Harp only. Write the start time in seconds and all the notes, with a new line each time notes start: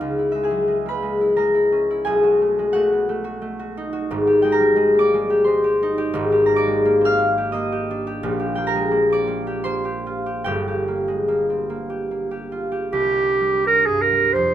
Already playing: G#4 A#4 C#5 G#5
0.01 C#2
0.19 E4
0.32 G#3 E5
0.43 G#4 G#5
0.51 F#3
0.68 G#3
0.86 A#3 B4 B5
1.03 G#3
1.21 E4
1.37 G#3 A#4 A#5
1.54 E4
1.72 C#4
1.91 E4
2.05 B1 G#4 G#5
2.23 F#4
2.42 A3
2.59 G#3
2.73 A3 F#4 F#5
2.93 B3
3.09 A3
3.24 F#4
3.42 A3
3.59 F#4
3.77 D#4
3.93 F#4
4.11 G#1 G#2
4.27 G4
4.42 G#3 G5
4.52 A#4 A#5
4.60 G3
4.76 G#3
4.94 A#3
4.99 D5 D6
5.14 G#3
5.30 G4
5.44 G#3 C5 C6
5.64 G4
5.83 D#4
5.98 G4
6.14 G#1 G#2
6.32 G4
6.46 A#3 A#5
6.56 D5 D6
6.67 G#3
6.85 A#3
7.01 C4
7.05 F5 F6
7.19 A#3
7.38 G4
7.52 A#3 D#5 D#6
7.72 G4
7.91 D4
8.07 G4
8.23 A#1 A#2
8.39 G4
8.55 A#3 G5
8.67 A#4 A#5
8.75 G#3
8.91 A#3
9.10 C4 D5 D6
9.27 A#3
9.47 G4
9.64 A#3 C5 C6
9.85 G4
10.06 F4
10.26 G4
10.44 G1 G2 G4 G5
10.68 G4
10.88 A#3
11.08 G#3
11.28 A#3
11.50 C4
11.70 A#3
11.90 G4
12.11 A#3
12.31 G4
12.52 F4
12.72 G4
12.93 C2
13.16 D4
13.41 G3
13.65 D4
13.88 G2
14.12 G3
14.36 F2